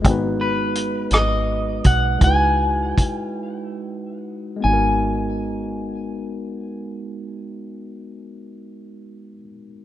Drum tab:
HH |x-xx-x|x-x---|------|------|
SD |---r--|------|------|------|
BD |o----o|o-o---|------|------|